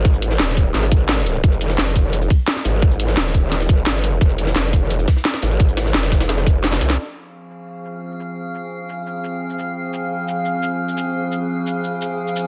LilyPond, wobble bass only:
\new Staff \with { instrumentName = "Wobble bass" } { \clef bass \time 4/4 \key f \minor \tempo 4 = 173 aes,,4 ees,,4 aes,,2 | f,,4 f,,4. r4 aes,,8~ | aes,,4 ees,,4. f,,8 g,,4 | f,,4 f,,4. r4 aes,,8~ |
aes,,4 f,,2~ f,,8 c,8 | r1 | r1 | r1 |
r1 | }